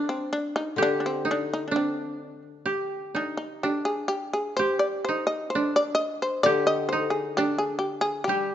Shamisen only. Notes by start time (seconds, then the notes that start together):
0.09 C4
0.33 D4
0.56 D#4
0.82 D4
1.00 D4
1.06 C4
1.31 D4
1.53 D#4
1.68 D4
1.76 C4
3.16 D4
3.37 D#4
3.63 G4
3.85 G#4
4.08 G4
4.33 G#4
4.57 C5
4.79 D5
5.05 C5
5.27 D#5
5.50 C5
5.76 D5
5.95 D#5
6.22 C5
6.43 D5
6.67 D#5
6.89 C5
7.10 G#4
7.37 G4
7.58 G#4
7.79 G4
8.01 G#4
8.24 G4